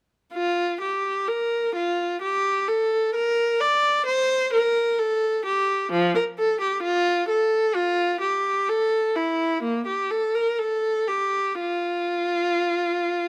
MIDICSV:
0, 0, Header, 1, 2, 480
1, 0, Start_track
1, 0, Key_signature, -2, "major"
1, 0, Tempo, 943396
1, 165, Time_signature, 4, 2, 24, 8
1, 1601, Tempo, 925926
1, 3992, Key_signature, -1, "major"
1, 4961, Tempo, 963082
1, 5441, Tempo, 1022147
1, 6704, End_track
2, 0, Start_track
2, 0, Title_t, "Viola"
2, 0, Program_c, 0, 41
2, 168, Note_on_c, 0, 65, 60
2, 393, Note_off_c, 0, 65, 0
2, 414, Note_on_c, 0, 67, 48
2, 646, Note_off_c, 0, 67, 0
2, 650, Note_on_c, 0, 70, 54
2, 887, Note_off_c, 0, 70, 0
2, 894, Note_on_c, 0, 65, 51
2, 1124, Note_off_c, 0, 65, 0
2, 1129, Note_on_c, 0, 67, 60
2, 1361, Note_off_c, 0, 67, 0
2, 1363, Note_on_c, 0, 69, 53
2, 1601, Note_off_c, 0, 69, 0
2, 1602, Note_on_c, 0, 70, 64
2, 1837, Note_off_c, 0, 70, 0
2, 1838, Note_on_c, 0, 74, 61
2, 2074, Note_on_c, 0, 72, 69
2, 2078, Note_off_c, 0, 74, 0
2, 2310, Note_off_c, 0, 72, 0
2, 2318, Note_on_c, 0, 70, 64
2, 2552, Note_off_c, 0, 70, 0
2, 2554, Note_on_c, 0, 69, 63
2, 2796, Note_off_c, 0, 69, 0
2, 2797, Note_on_c, 0, 67, 58
2, 3035, Note_off_c, 0, 67, 0
2, 3038, Note_on_c, 0, 53, 73
2, 3156, Note_off_c, 0, 53, 0
2, 3160, Note_on_c, 0, 70, 55
2, 3202, Note_off_c, 0, 70, 0
2, 3280, Note_on_c, 0, 69, 59
2, 3393, Note_on_c, 0, 67, 52
2, 3396, Note_off_c, 0, 69, 0
2, 3508, Note_on_c, 0, 65, 67
2, 3512, Note_off_c, 0, 67, 0
2, 3745, Note_off_c, 0, 65, 0
2, 3750, Note_on_c, 0, 69, 65
2, 3985, Note_off_c, 0, 69, 0
2, 3988, Note_on_c, 0, 65, 75
2, 4225, Note_on_c, 0, 67, 57
2, 4229, Note_off_c, 0, 65, 0
2, 4465, Note_off_c, 0, 67, 0
2, 4473, Note_on_c, 0, 69, 63
2, 4716, Note_off_c, 0, 69, 0
2, 4718, Note_on_c, 0, 64, 57
2, 4962, Note_off_c, 0, 64, 0
2, 4962, Note_on_c, 0, 58, 56
2, 5077, Note_off_c, 0, 58, 0
2, 5078, Note_on_c, 0, 67, 50
2, 5196, Note_off_c, 0, 67, 0
2, 5197, Note_on_c, 0, 69, 57
2, 5318, Note_off_c, 0, 69, 0
2, 5323, Note_on_c, 0, 70, 51
2, 5439, Note_on_c, 0, 69, 60
2, 5442, Note_off_c, 0, 70, 0
2, 5669, Note_on_c, 0, 67, 54
2, 5673, Note_off_c, 0, 69, 0
2, 5914, Note_off_c, 0, 67, 0
2, 5915, Note_on_c, 0, 65, 57
2, 6704, Note_off_c, 0, 65, 0
2, 6704, End_track
0, 0, End_of_file